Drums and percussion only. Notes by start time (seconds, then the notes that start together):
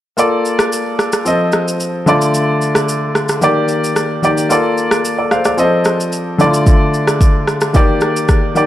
0.18 shaker
0.45 shaker
0.59 cross-stick, shaker
0.72 shaker
0.99 cross-stick, shaker
1.12 cross-stick, shaker
1.26 shaker
1.52 cross-stick, shaker
1.68 shaker
1.80 shaker
2.07 shaker
2.21 shaker
2.34 shaker
2.61 shaker
2.75 cross-stick, shaker
2.89 shaker
3.15 cross-stick, shaker
3.29 cross-stick, shaker
3.42 shaker
3.68 shaker
3.84 shaker
3.96 cross-stick, shaker
4.23 shaker
4.37 shaker
4.50 shaker
4.78 shaker
4.91 cross-stick, shaker
5.05 shaker
5.31 cross-stick, shaker
5.45 cross-stick, shaker
5.58 shaker
5.84 cross-stick, shaker
6.00 shaker
6.12 shaker
6.39 shaker
6.54 shaker
6.67 kick, shaker
6.94 shaker
7.07 cross-stick, shaker
7.21 kick, shaker
7.48 cross-stick, shaker
7.61 cross-stick, shaker
7.74 kick, shaker
8.01 cross-stick, shaker
8.16 shaker
8.29 kick, cross-stick, shaker
8.56 shaker